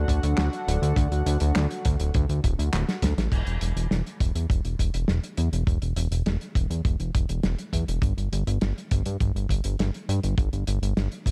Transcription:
Already playing: analog synth pad D4 F#4 A4 F#5
0.08 analog synth bass D2, kick, closed hi-hat
0.23 analog synth bass D2, closed hi-hat
0.38 analog synth bass D2, snare, clap, closed hi-hat
0.53 closed hi-hat
0.67 analog synth bass D1, closed hi-hat
0.82 analog synth bass D2, closed hi-hat
0.96 analog synth bass D2, kick, closed hi-hat
1.11 analog synth bass D2, closed hi-hat
1.26 analog synth bass D2, closed hi-hat
1.40 analog synth bass D2, closed hi-hat
1.56 analog synth bass D2, snare, clap, closed hi-hat
1.71 closed hi-hat
1.85 analog synth bass D2, kick, closed hi-hat
2.00 analog synth bass D1, closed hi-hat
2.14 analog synth bass D2, kick, closed hi-hat
2.29 analog synth bass D2, closed hi-hat
2.44 analog synth bass D1, kick, closed hi-hat
2.59 analog synth bass D2, closed hi-hat
2.73 analog synth bass D1, snare, clap, closed hi-hat
2.88 snare, closed hi-hat
3.02 analog synth bass D2, kick, snare, closed hi-hat
3.17 analog synth bass A1, snare, closed hi-hat
3.32 analog synth bass E1, kick, closed hi-hat, crash
3.47 analog synth bass E1, closed hi-hat
3.61 analog synth bass E1, closed hi-hat
3.76 analog synth bass E1, closed hi-hat
3.91 analog synth bass E1, snare, closed hi-hat
4.06 closed hi-hat
4.20 analog synth bass E1, kick, closed hi-hat
4.35 analog synth bass E2, closed hi-hat
4.50 analog synth bass E1, kick, closed hi-hat
4.64 analog synth bass E1, closed hi-hat
4.79 analog synth bass E1, kick, closed hi-hat
4.94 analog synth bass E1, closed hi-hat
5.08 analog synth bass E1, snare, closed hi-hat
5.23 closed hi-hat
5.37 analog synth bass E2, closed hi-hat
5.53 analog synth bass E1, closed hi-hat
5.67 analog synth bass E1, kick, closed hi-hat
5.82 analog synth bass E1, closed hi-hat
5.96 analog synth bass E1, closed hi-hat
6.11 analog synth bass E1, closed hi-hat
6.26 analog synth bass E1, snare, closed hi-hat
6.41 closed hi-hat
6.55 analog synth bass E1, kick, closed hi-hat
6.70 analog synth bass E2, closed hi-hat
6.85 analog synth bass E1, kick, closed hi-hat
7.00 analog synth bass E1, closed hi-hat
7.15 analog synth bass E1, kick, closed hi-hat
7.29 analog synth bass E1, closed hi-hat
7.43 analog synth bass E1, snare, closed hi-hat
7.58 closed hi-hat
7.73 analog synth bass E2, kick, closed hi-hat
7.88 analog synth bass E1, closed hi-hat
8.02 analog synth bass G1, kick, closed hi-hat
8.17 analog synth bass G1, closed hi-hat
8.32 analog synth bass G1, closed hi-hat
8.47 analog synth bass G1, closed hi-hat
8.61 analog synth bass G1, snare, closed hi-hat
8.78 closed hi-hat
8.91 analog synth bass G1, kick, closed hi-hat
9.06 analog synth bass G2, closed hi-hat
9.20 analog synth bass G1, kick, closed hi-hat
9.35 analog synth bass G1, closed hi-hat
9.49 analog synth bass G1, kick, closed hi-hat
9.64 analog synth bass G1, closed hi-hat
9.79 analog synth bass G1, snare, closed hi-hat
9.94 closed hi-hat
10.09 analog synth bass G2, closed hi-hat
10.23 analog synth bass G1, closed hi-hat
10.38 analog synth bass G1, kick, closed hi-hat
10.53 analog synth bass G1, closed hi-hat
10.67 analog synth bass G1, closed hi-hat
10.82 analog synth bass G1, closed hi-hat
10.97 analog synth bass G1, snare, closed hi-hat
11.12 closed hi-hat
11.26 analog synth bass G1, kick, closed hi-hat

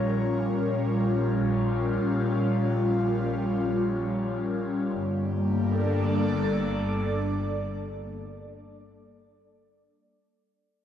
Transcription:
Already playing: double bass section A#1, analog synth pad G3 C#4 F4 A#4 C#5
4.95 double bass section G1, analog synth pad G3
5.09 analog synth pad A#3
5.27 analog synth pad D4
5.41 analog synth pad A4
5.58 analog synth pad D5

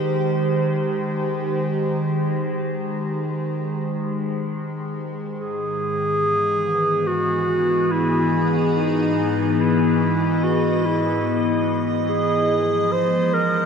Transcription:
Already playing: ambient pad D#3 G#3 G4 C5
5.37 ambient pad G#2, clarinet G#4
5.82 ambient pad B3
5.98 ambient pad E3
7.07 clarinet F#4, ambient pad G#4
7.91 clarinet E4
8.13 ambient pad D#5
8.76 clarinet D#4
9.60 clarinet E4
10.43 clarinet F#4
10.86 clarinet E4
12.09 ambient pad F3, clarinet G#4
12.23 ambient pad G#3
12.92 clarinet C5, ambient pad G5
13.34 clarinet A#4

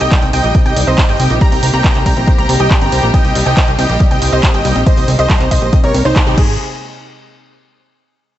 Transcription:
Already playing: string section C3 G3 A#3 D#4 G4
0.01 analog synth bass C2, synth pluck G4 G5, supersaw synth D#5 G5, closed hi-hat
0.12 synth pluck G3, kick, clap, closed hi-hat
0.22 analog synth bass C2, synth pluck C4, closed hi-hat
0.33 analog synth bass C2, synth pluck C5 G5, supersaw synth D#5 G5, open hi-hat
0.44 analog synth bass A#1, synth pluck G4, closed hi-hat
0.55 synth pluck C4, kick, closed hi-hat
0.66 analog synth bass C2, synth pluck G4 G5, supersaw synth D#5 G5, closed hi-hat
0.76 analog synth bass C2, synth pluck G3, open hi-hat
0.87 analog synth bass C2, synth pluck C4 D#5, supersaw synth C5 D#5, closed hi-hat
0.98 synth pluck C5, kick, clap, closed hi-hat
1.09 analog synth bass G1, synth pluck G4 G5, supersaw synth D#5 G5, closed hi-hat
1.20 analog synth bass C2, synth pluck C4, open hi-hat
1.30 analog synth bass A#1, synth pluck G4, closed hi-hat
1.41 synth pluck G3 A#5, supersaw synth G5 A#5, kick, closed hi-hat
1.52 analog synth bass C2, synth pluck C4, open hi-hat
1.63 analog synth bass C2, synth pluck C5, open hi-hat
1.74 analog synth bass C2, synth pluck G4 A#5, supersaw synth G5 A#5, closed hi-hat
1.84 synth pluck C4, kick, clap, closed hi-hat
1.95 analog synth bass C2, synth pluck G4, clap, closed hi-hat
2.06 analog synth bass C2, synth pluck G3 A#5, supersaw synth G5 A#5, kick, open hi-hat
2.17 analog synth bass A#1, synth pluck C4, closed hi-hat
2.27 synth pluck C5, kick, closed hi-hat
2.38 analog synth bass C2, synth pluck G4 A#5, supersaw synth G5 A#5, closed hi-hat
2.49 analog synth bass C2, synth pluck C4, open hi-hat
2.60 analog synth bass C2, synth pluck G4 G5, supersaw synth D#5 G5, closed hi-hat
2.71 synth pluck G3, kick, clap, closed hi-hat
2.81 analog synth bass G1, synth pluck C4 A#5, supersaw synth G5 A#5, closed hi-hat
2.92 analog synth bass C2, synth pluck C5, open hi-hat
3.03 analog synth bass A#1, synth pluck G4, closed hi-hat
3.14 synth pluck C4 G5, supersaw synth D#5 G5, kick, closed hi-hat
3.25 analog synth bass C2, synth pluck G4, closed hi-hat
3.35 analog synth bass C2, synth pluck G3, open hi-hat
3.46 analog synth bass C2, synth pluck C4 G5, supersaw synth D#5 G5, closed hi-hat
3.57 synth pluck C5, kick, clap, closed hi-hat
3.68 analog synth bass C2, synth pluck G4, closed hi-hat
3.78 analog synth bass C2, synth pluck C4 G5, supersaw synth D#5 G5, open hi-hat
3.89 analog synth bass A#1, synth pluck G4, closed hi-hat
4.00 synth pluck G3, kick, closed hi-hat
4.11 analog synth bass C2, synth pluck C4 G5, supersaw synth D#5 G5, closed hi-hat
4.22 analog synth bass C2, synth pluck C5, open hi-hat
4.33 analog synth bass C2, synth pluck G4 D#5, supersaw synth C5 D#5, closed hi-hat
4.43 synth pluck C4, kick, clap, closed hi-hat
4.54 analog synth bass G1, synth pluck G4 G5, supersaw synth D#5 G5, closed hi-hat
4.65 analog synth bass C2, synth pluck G3, open hi-hat
4.76 analog synth bass A#1, synth pluck C4, closed hi-hat
4.87 synth pluck C5 D#5, supersaw synth C5 D#5, kick, closed hi-hat
4.97 analog synth bass C2, synth pluck G4, open hi-hat
5.08 analog synth bass C2, synth pluck C4, open hi-hat
5.19 analog synth bass C2, synth pluck G4 D#5, supersaw synth C5 D#5, closed hi-hat
5.30 synth pluck G3, kick, clap, closed hi-hat
5.40 analog synth bass C2, synth pluck C4, clap, closed hi-hat
5.51 analog synth bass C2, synth pluck C5 D#5, supersaw synth C5 D#5, kick, open hi-hat
5.62 analog synth bass A#1, synth pluck G4, closed hi-hat
5.73 synth pluck C4, kick, closed hi-hat
5.84 analog synth bass C2, synth pluck G4 C#5, supersaw synth A#4 C#5, closed hi-hat
5.94 analog synth bass C2, synth pluck C4, open hi-hat
6.05 analog synth bass C2, supersaw synth D#4 C5, synth pluck C5, closed hi-hat
6.16 synth pluck C5, kick, clap, closed hi-hat
6.27 analog synth bass C2, supersaw synth D#4 G4, synth pluck G4 C5, closed hi-hat
6.38 analog synth bass G#1, string section C3 G#3 A#3 D#4 G#4, synth pluck G#3 G#4, supersaw synth G#4, kick, crash

